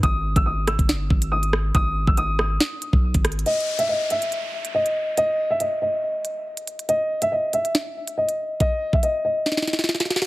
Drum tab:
HH |x-----------------x-----------------x-----x-----x-----------------x-----------x-----------------|x-----------------------x-----------------------------------x-----------------x-----x---x---x---|x---x---x---------x-----------------x-----x-----x-----------------x-----------x-----------------|x-----------------------x-----------------------------------x-----------------x-----x-----x-----|
SD |------------------------------------r-----------o-----------------------------------r-----------|------------------------------------r-----------o-----------------------------------r-----------|------------------------------------------------------------------------------------------------|------------------------------------------------------------------------------------------------|
BD |o-----------------o-----------------------o-----------------o-----------------------------------|o-----------------o-----------------------------------------------o-----------o-----------------|------------------------------------------------------------------------------------------------|------------------------------------------------------------------------------------------------|

HH |x-----------------x-----------------x-----x-----x-----------------x-----------x-----------------|x-----------------------x-----------------------------------x-----------------x-----x---x-------|
SD |------------------------------------------------o-----------------------------------------------|------------------------------------------------o--o--o--o--o--o--o--o--o--o--o--o--o--o--o-----|
BD |------------------------------------------------------------------------------------------------|o-----------------o-----------------------------------------------------------------------------|